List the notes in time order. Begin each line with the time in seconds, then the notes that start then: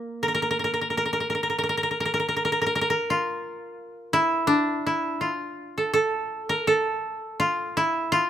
Already playing: A#3
0.23 A#4
0.28 A#4
0.34 A#4
0.42 A#4
0.51 A#4
0.59 A#4
0.64 A#4
0.74 A#4
0.81 A#4
0.90 A#4
0.97 A#4
1.05 A#4
1.13 A#4
1.20 A#4
1.30 A#4
1.35 A#4
1.43 A#4
1.50 A#4
1.58 A#4
1.63 A#4
1.69 A#4
1.77 A#4
1.83 A#4
1.91 A#4
2.00 A#4
2.05 A#4
2.14 A#4
2.20 A#4
2.28 A#4
2.36 A#4
2.45 A#4
2.52 A#4
2.62 A#4
2.66 A#4
2.75 A#4
2.81 A#4
2.90 A#4
3.10 F4
4.13 E4
4.47 D4
4.86 E4
5.21 F4
5.78 A4
5.93 A4
6.49 A#4
6.67 A4
7.40 F4
7.77 E4
8.12 F4